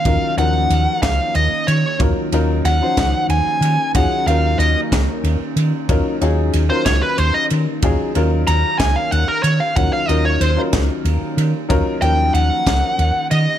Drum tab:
RD |xxxxxx|xxxxxx|xxxxxx|xxxxxx|
SD |---o--|---o--|---o--|---o--|
BD |o--o--|o--o--|o--o--|o--o--|

RD |xxxxxx|xxxxxx|xxxxxx|
SD |---o--|---o--|---o--|
BD |o--o--|o--o--|o--o--|